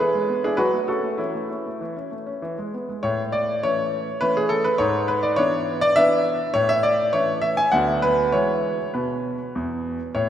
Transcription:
0.00 0.14 E3 medium
0.00 0.41 G#4 medium
0.00 0.44 B4 medium
0.14 0.30 G#3 medium
0.29 0.45 B3 soft
0.44 0.59 D4 medium
0.44 0.59 E4 medium
0.44 0.59 G#4 medium
0.57 0.73 F#3 medium
0.57 0.87 F#4 medium
0.57 0.76 B4 loud
0.73 0.90 A3 soft
0.88 1.05 C#4 medium
0.88 1.17 F#4 medium
0.88 1.19 A4 medium
1.04 1.19 A3 soft
1.18 1.34 E3 medium
1.18 1.49 C#4 medium
1.18 2.10 E4 medium
1.35 1.51 A3 soft
1.50 1.66 C#4 soft
1.66 1.82 A3 soft
1.81 1.96 E3 medium
1.97 2.12 C#4 soft
2.11 2.27 A3 soft
2.27 2.42 C#4 medium
2.42 2.57 E3 medium
2.58 2.74 G#3 soft
2.74 2.89 B3 soft
2.89 3.03 G#3 soft
3.03 3.61 A2 medium
3.03 3.21 C#5 loud
3.32 3.62 D5 medium
3.63 4.06 E3 medium
3.63 4.06 A3 soft
3.63 4.06 C#4 medium
3.63 4.21 C#5 loud
4.21 4.64 E3 medium
4.21 4.64 A3 medium
4.21 4.64 C#4 medium
4.21 4.35 B4 loud
4.37 4.51 G#4 medium
4.49 4.64 A4 loud
4.64 4.79 B4 loud
4.78 5.36 G#2 medium
4.78 5.08 C#5 loud
5.08 5.23 B4 medium
5.23 5.38 D5 medium
5.36 5.80 E3 medium
5.36 5.80 B3 medium
5.36 5.80 D4 medium
5.36 5.81 C#5 loud
5.81 5.96 D5 loud
5.96 6.38 E3 medium
5.96 6.38 B3 medium
5.96 6.39 D4 medium
5.96 6.54 E5 loud
6.54 7.12 A2 medium
6.54 6.69 C#5 loud
6.69 6.84 E5 loud
6.83 7.13 D5 loud
7.13 7.57 E3 medium
7.13 7.57 A3 medium
7.13 7.57 C#4 medium
7.13 7.40 C#5 loud
7.42 7.57 E5 loud
7.57 7.73 G#5 loud
7.72 8.32 D2 medium
7.72 8.29 F#3 medium
7.72 8.30 B3 medium
7.72 8.30 D4 medium
7.72 7.99 F#5 loud
8.02 8.33 B4 loud
8.32 8.76 E3 medium
8.32 8.82 G#3 soft
8.32 8.82 E4 soft
8.32 8.90 C#5 medium
8.94 9.37 B2 medium
8.94 9.55 B4 medium
9.55 9.98 E2 medium
10.15 10.29 A2 medium
10.15 10.29 C#5 medium

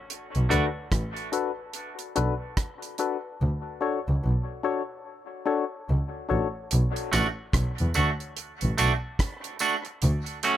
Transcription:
0.10 closed hi-hat medium
0.35 0.44 B1 loud
0.35 closed hi-hat soft
0.49 0.60 D2 medium
0.49 0.64 A3 medium
0.49 0.69 D4 loud
0.49 0.65 D4 medium
0.49 0.65 F#4 medium
0.49 0.69 F#4 medium
0.49 0.69 A4 medium
0.49 0.69 B4 medium
0.49 closed hi-hat medium
0.92 1.00 A1 loud
0.92 kick loud
0.92 cross-stick loud
0.92 closed hi-hat medium
1.17 closed hi-hat soft
1.32 1.51 D4 medium
1.32 1.51 F#4 medium
1.32 1.51 A4 medium
1.32 1.52 B4 loud
1.32 closed hi-hat medium
1.73 closed hi-hat medium
1.99 closed hi-hat medium
2.16 2.26 B1 loud
2.16 2.34 D4 loud
2.16 2.34 F#4 medium
2.16 2.34 A4 loud
2.16 2.35 B4 loud
2.16 closed hi-hat medium
2.57 kick loud
2.57 cross-stick loud
2.57 closed hi-hat medium
2.82 closed hi-hat medium
2.98 3.17 D4 medium
2.98 3.17 F#4 medium
2.98 3.17 A4 medium
2.98 3.18 B4 medium
2.98 closed hi-hat medium
3.42 3.50 D2 medium
3.81 3.99 D4 medium
3.81 3.99 F#4 medium
3.81 4.00 A4 medium
3.81 4.00 C#5 loud
4.08 4.16 C#2 medium
4.25 4.33 B1 medium
4.63 4.82 D4 medium
4.63 4.82 F#4 medium
4.63 4.82 A4 medium
4.63 4.83 C#5 loud
5.46 5.64 D4 loud
5.46 5.65 F#4 medium
5.46 5.65 A4 loud
5.46 5.65 C#5 loud
5.90 5.98 C#2 medium
6.29 6.40 A1 medium
6.29 6.47 D4 medium
6.29 6.48 F#4 medium
6.29 6.48 A4 medium
6.29 6.48 C#5 loud
6.71 6.81 B1 loud
6.71 closed hi-hat medium
6.96 closed hi-hat soft
7.12 7.22 A1 medium
7.12 7.26 A3 medium
7.12 7.27 D4 medium
7.12 7.27 F#4 medium
7.12 cross-stick medium
7.12 closed hi-hat medium
7.12 tambourine medium
7.53 7.62 B1 loud
7.53 kick loud
7.53 cross-stick loud
7.53 closed hi-hat loud
7.78 7.89 E2 medium
7.78 closed hi-hat soft
7.94 8.05 D2 medium
7.94 8.09 A3 medium
7.94 8.09 D4 medium
7.94 8.10 F#4 medium
7.94 closed hi-hat medium
7.94 tambourine medium
8.20 closed hi-hat soft
8.37 closed hi-hat medium
8.61 8.71 A1 medium
8.61 closed hi-hat medium
8.78 8.87 B1 medium
8.78 8.92 A3 medium
8.78 8.92 D4 medium
8.78 8.92 F#4 medium
8.78 closed hi-hat medium
8.78 tambourine medium
9.19 kick loud
9.19 cross-stick loud
9.19 closed hi-hat medium
9.44 closed hi-hat medium
9.59 9.74 A3 medium
9.59 9.75 D4 loud
9.59 9.75 F#4 medium
9.59 closed hi-hat medium
9.59 tambourine medium
9.85 muted clean electric guitar stroke soft
9.85 closed hi-hat soft
10.02 10.11 D2 loud
10.02 closed hi-hat medium
10.26 closed hi-hat soft
10.43 10.57 A3 medium
10.43 10.57 C#4 medium
10.43 10.57 F#4 loud
10.43 closed hi-hat medium

